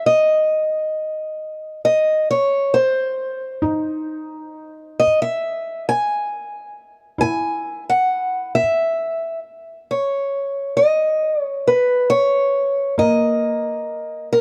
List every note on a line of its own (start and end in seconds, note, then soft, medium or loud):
0.06 1.80 D#5 medium
1.85 2.30 D#5 medium
2.31 2.75 C#5 medium
2.74 5.03 C5 medium
3.62 5.02 D#4 medium
5.00 5.21 D#5 medium
5.22 5.88 E5 medium
5.89 7.20 G#5 medium
7.18 8.59 E4 soft
7.18 7.83 G#5 medium
7.90 8.55 F#5 medium
8.55 9.39 E5 medium
9.91 10.76 C#5 medium
10.77 11.42 D#5 medium
11.42 11.68 C#5 medium
11.68 12.08 B4 medium
12.10 12.94 C#5 medium
12.98 14.37 A#3 medium
12.98 14.28 D#5 medium
14.33 14.41 A#4 medium